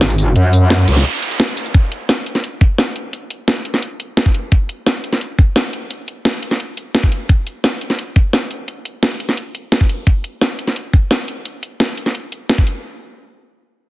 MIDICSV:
0, 0, Header, 1, 4, 480
1, 0, Start_track
1, 0, Tempo, 346821
1, 493, Time_signature, 4, 2, 24, 8
1, 19227, End_track
2, 0, Start_track
2, 0, Title_t, "Wobble bass"
2, 0, Program_c, 0, 39
2, 14, Note_on_c, 0, 32, 96
2, 475, Note_off_c, 0, 32, 0
2, 494, Note_on_c, 0, 42, 101
2, 1195, Note_off_c, 0, 42, 0
2, 1215, Note_on_c, 0, 37, 105
2, 1435, Note_off_c, 0, 37, 0
2, 19227, End_track
3, 0, Start_track
3, 0, Title_t, "Noise sweep"
3, 0, Program_c, 1, 103
3, 494, Note_on_c, 1, 60, 59
3, 2414, Note_off_c, 1, 60, 0
3, 19227, End_track
4, 0, Start_track
4, 0, Title_t, "Drums"
4, 14, Note_on_c, 9, 38, 114
4, 14, Note_on_c, 9, 42, 93
4, 135, Note_on_c, 9, 54, 30
4, 153, Note_off_c, 9, 38, 0
4, 153, Note_off_c, 9, 42, 0
4, 254, Note_off_c, 9, 54, 0
4, 254, Note_on_c, 9, 42, 60
4, 254, Note_on_c, 9, 54, 59
4, 393, Note_off_c, 9, 42, 0
4, 393, Note_off_c, 9, 54, 0
4, 494, Note_on_c, 9, 42, 92
4, 632, Note_off_c, 9, 42, 0
4, 734, Note_on_c, 9, 42, 64
4, 734, Note_on_c, 9, 54, 60
4, 872, Note_off_c, 9, 42, 0
4, 872, Note_off_c, 9, 54, 0
4, 974, Note_on_c, 9, 38, 111
4, 974, Note_on_c, 9, 42, 86
4, 1112, Note_off_c, 9, 38, 0
4, 1112, Note_off_c, 9, 42, 0
4, 1215, Note_on_c, 9, 42, 65
4, 1215, Note_on_c, 9, 54, 59
4, 1334, Note_on_c, 9, 38, 35
4, 1353, Note_off_c, 9, 42, 0
4, 1353, Note_off_c, 9, 54, 0
4, 1454, Note_on_c, 9, 42, 89
4, 1473, Note_off_c, 9, 38, 0
4, 1593, Note_off_c, 9, 42, 0
4, 1694, Note_on_c, 9, 42, 59
4, 1694, Note_on_c, 9, 54, 60
4, 1814, Note_off_c, 9, 54, 0
4, 1814, Note_on_c, 9, 54, 31
4, 1832, Note_off_c, 9, 42, 0
4, 1933, Note_on_c, 9, 38, 120
4, 1933, Note_on_c, 9, 42, 98
4, 1952, Note_off_c, 9, 54, 0
4, 2053, Note_on_c, 9, 54, 31
4, 2072, Note_off_c, 9, 38, 0
4, 2072, Note_off_c, 9, 42, 0
4, 2173, Note_off_c, 9, 54, 0
4, 2173, Note_on_c, 9, 42, 64
4, 2173, Note_on_c, 9, 54, 65
4, 2293, Note_off_c, 9, 54, 0
4, 2293, Note_on_c, 9, 54, 28
4, 2311, Note_off_c, 9, 42, 0
4, 2413, Note_on_c, 9, 42, 91
4, 2415, Note_on_c, 9, 36, 119
4, 2432, Note_off_c, 9, 54, 0
4, 2552, Note_off_c, 9, 42, 0
4, 2553, Note_off_c, 9, 36, 0
4, 2653, Note_on_c, 9, 42, 64
4, 2791, Note_off_c, 9, 42, 0
4, 2893, Note_on_c, 9, 38, 115
4, 2893, Note_on_c, 9, 42, 91
4, 3032, Note_off_c, 9, 38, 0
4, 3032, Note_off_c, 9, 42, 0
4, 3133, Note_on_c, 9, 42, 65
4, 3254, Note_on_c, 9, 38, 35
4, 3271, Note_off_c, 9, 42, 0
4, 3373, Note_on_c, 9, 42, 92
4, 3392, Note_off_c, 9, 38, 0
4, 3512, Note_off_c, 9, 42, 0
4, 3613, Note_on_c, 9, 42, 61
4, 3614, Note_on_c, 9, 36, 106
4, 3752, Note_off_c, 9, 42, 0
4, 3753, Note_off_c, 9, 36, 0
4, 3854, Note_on_c, 9, 38, 119
4, 3854, Note_on_c, 9, 42, 93
4, 3992, Note_off_c, 9, 38, 0
4, 3992, Note_off_c, 9, 42, 0
4, 4093, Note_on_c, 9, 42, 69
4, 4232, Note_off_c, 9, 42, 0
4, 4334, Note_on_c, 9, 42, 98
4, 4472, Note_off_c, 9, 42, 0
4, 4574, Note_on_c, 9, 42, 65
4, 4712, Note_off_c, 9, 42, 0
4, 4814, Note_on_c, 9, 38, 117
4, 4814, Note_on_c, 9, 42, 90
4, 4952, Note_off_c, 9, 38, 0
4, 4952, Note_off_c, 9, 42, 0
4, 5054, Note_on_c, 9, 42, 69
4, 5174, Note_on_c, 9, 38, 38
4, 5192, Note_off_c, 9, 42, 0
4, 5294, Note_on_c, 9, 42, 89
4, 5312, Note_off_c, 9, 38, 0
4, 5432, Note_off_c, 9, 42, 0
4, 5534, Note_on_c, 9, 42, 63
4, 5672, Note_off_c, 9, 42, 0
4, 5774, Note_on_c, 9, 38, 123
4, 5774, Note_on_c, 9, 42, 97
4, 5894, Note_on_c, 9, 36, 103
4, 5912, Note_off_c, 9, 38, 0
4, 5912, Note_off_c, 9, 42, 0
4, 6014, Note_on_c, 9, 42, 66
4, 6033, Note_off_c, 9, 36, 0
4, 6152, Note_off_c, 9, 42, 0
4, 6253, Note_on_c, 9, 42, 91
4, 6254, Note_on_c, 9, 36, 122
4, 6392, Note_off_c, 9, 42, 0
4, 6393, Note_off_c, 9, 36, 0
4, 6493, Note_on_c, 9, 42, 67
4, 6632, Note_off_c, 9, 42, 0
4, 6734, Note_on_c, 9, 38, 115
4, 6734, Note_on_c, 9, 42, 89
4, 6872, Note_off_c, 9, 38, 0
4, 6872, Note_off_c, 9, 42, 0
4, 6974, Note_on_c, 9, 42, 65
4, 7094, Note_on_c, 9, 38, 38
4, 7112, Note_off_c, 9, 42, 0
4, 7214, Note_on_c, 9, 42, 86
4, 7233, Note_off_c, 9, 38, 0
4, 7352, Note_off_c, 9, 42, 0
4, 7454, Note_on_c, 9, 36, 115
4, 7454, Note_on_c, 9, 42, 64
4, 7592, Note_off_c, 9, 42, 0
4, 7593, Note_off_c, 9, 36, 0
4, 7693, Note_on_c, 9, 38, 127
4, 7693, Note_on_c, 9, 42, 93
4, 7832, Note_off_c, 9, 38, 0
4, 7832, Note_off_c, 9, 42, 0
4, 7933, Note_on_c, 9, 42, 65
4, 8071, Note_off_c, 9, 42, 0
4, 8173, Note_on_c, 9, 42, 87
4, 8312, Note_off_c, 9, 42, 0
4, 8414, Note_on_c, 9, 42, 62
4, 8552, Note_off_c, 9, 42, 0
4, 8653, Note_on_c, 9, 38, 111
4, 8653, Note_on_c, 9, 42, 85
4, 8791, Note_off_c, 9, 38, 0
4, 8791, Note_off_c, 9, 42, 0
4, 8893, Note_on_c, 9, 42, 65
4, 9013, Note_on_c, 9, 38, 36
4, 9031, Note_off_c, 9, 42, 0
4, 9133, Note_on_c, 9, 42, 85
4, 9152, Note_off_c, 9, 38, 0
4, 9272, Note_off_c, 9, 42, 0
4, 9373, Note_on_c, 9, 42, 61
4, 9512, Note_off_c, 9, 42, 0
4, 9613, Note_on_c, 9, 38, 124
4, 9613, Note_on_c, 9, 42, 91
4, 9734, Note_on_c, 9, 36, 95
4, 9751, Note_off_c, 9, 38, 0
4, 9751, Note_off_c, 9, 42, 0
4, 9853, Note_on_c, 9, 42, 64
4, 9873, Note_off_c, 9, 36, 0
4, 9991, Note_off_c, 9, 42, 0
4, 10093, Note_on_c, 9, 42, 85
4, 10094, Note_on_c, 9, 36, 113
4, 10231, Note_off_c, 9, 42, 0
4, 10233, Note_off_c, 9, 36, 0
4, 10333, Note_on_c, 9, 42, 60
4, 10472, Note_off_c, 9, 42, 0
4, 10573, Note_on_c, 9, 38, 116
4, 10573, Note_on_c, 9, 42, 82
4, 10712, Note_off_c, 9, 38, 0
4, 10712, Note_off_c, 9, 42, 0
4, 10813, Note_on_c, 9, 42, 65
4, 10933, Note_on_c, 9, 38, 36
4, 10952, Note_off_c, 9, 42, 0
4, 11053, Note_on_c, 9, 42, 79
4, 11072, Note_off_c, 9, 38, 0
4, 11192, Note_off_c, 9, 42, 0
4, 11293, Note_on_c, 9, 42, 57
4, 11294, Note_on_c, 9, 36, 101
4, 11431, Note_off_c, 9, 42, 0
4, 11433, Note_off_c, 9, 36, 0
4, 11533, Note_on_c, 9, 38, 119
4, 11533, Note_on_c, 9, 42, 87
4, 11672, Note_off_c, 9, 38, 0
4, 11672, Note_off_c, 9, 42, 0
4, 11773, Note_on_c, 9, 42, 60
4, 11912, Note_off_c, 9, 42, 0
4, 12013, Note_on_c, 9, 42, 87
4, 12152, Note_off_c, 9, 42, 0
4, 12253, Note_on_c, 9, 42, 58
4, 12392, Note_off_c, 9, 42, 0
4, 12493, Note_on_c, 9, 38, 112
4, 12493, Note_on_c, 9, 42, 80
4, 12632, Note_off_c, 9, 38, 0
4, 12632, Note_off_c, 9, 42, 0
4, 12733, Note_on_c, 9, 42, 64
4, 12853, Note_on_c, 9, 38, 35
4, 12872, Note_off_c, 9, 42, 0
4, 12973, Note_on_c, 9, 42, 83
4, 12992, Note_off_c, 9, 38, 0
4, 13112, Note_off_c, 9, 42, 0
4, 13213, Note_on_c, 9, 42, 56
4, 13352, Note_off_c, 9, 42, 0
4, 13453, Note_on_c, 9, 38, 109
4, 13453, Note_on_c, 9, 42, 90
4, 13574, Note_on_c, 9, 36, 95
4, 13592, Note_off_c, 9, 38, 0
4, 13592, Note_off_c, 9, 42, 0
4, 13694, Note_on_c, 9, 42, 60
4, 13713, Note_off_c, 9, 36, 0
4, 13832, Note_off_c, 9, 42, 0
4, 13934, Note_on_c, 9, 36, 105
4, 13934, Note_on_c, 9, 42, 87
4, 14072, Note_off_c, 9, 42, 0
4, 14073, Note_off_c, 9, 36, 0
4, 14174, Note_on_c, 9, 42, 62
4, 14312, Note_off_c, 9, 42, 0
4, 14414, Note_on_c, 9, 38, 106
4, 14414, Note_on_c, 9, 42, 85
4, 14552, Note_off_c, 9, 38, 0
4, 14552, Note_off_c, 9, 42, 0
4, 14654, Note_on_c, 9, 42, 59
4, 14774, Note_on_c, 9, 38, 32
4, 14792, Note_off_c, 9, 42, 0
4, 14894, Note_on_c, 9, 42, 83
4, 14912, Note_off_c, 9, 38, 0
4, 15033, Note_off_c, 9, 42, 0
4, 15134, Note_on_c, 9, 36, 102
4, 15134, Note_on_c, 9, 42, 60
4, 15272, Note_off_c, 9, 42, 0
4, 15273, Note_off_c, 9, 36, 0
4, 15374, Note_on_c, 9, 38, 113
4, 15374, Note_on_c, 9, 42, 88
4, 15512, Note_off_c, 9, 38, 0
4, 15512, Note_off_c, 9, 42, 0
4, 15614, Note_on_c, 9, 42, 60
4, 15752, Note_off_c, 9, 42, 0
4, 15853, Note_on_c, 9, 42, 87
4, 15992, Note_off_c, 9, 42, 0
4, 16094, Note_on_c, 9, 42, 68
4, 16232, Note_off_c, 9, 42, 0
4, 16333, Note_on_c, 9, 38, 110
4, 16333, Note_on_c, 9, 42, 88
4, 16471, Note_off_c, 9, 38, 0
4, 16471, Note_off_c, 9, 42, 0
4, 16573, Note_on_c, 9, 42, 65
4, 16693, Note_on_c, 9, 38, 31
4, 16712, Note_off_c, 9, 42, 0
4, 16813, Note_on_c, 9, 42, 90
4, 16831, Note_off_c, 9, 38, 0
4, 16951, Note_off_c, 9, 42, 0
4, 17053, Note_on_c, 9, 42, 65
4, 17191, Note_off_c, 9, 42, 0
4, 17293, Note_on_c, 9, 38, 114
4, 17293, Note_on_c, 9, 42, 90
4, 17414, Note_on_c, 9, 36, 92
4, 17431, Note_off_c, 9, 38, 0
4, 17431, Note_off_c, 9, 42, 0
4, 17533, Note_on_c, 9, 42, 68
4, 17552, Note_off_c, 9, 36, 0
4, 17671, Note_off_c, 9, 42, 0
4, 19227, End_track
0, 0, End_of_file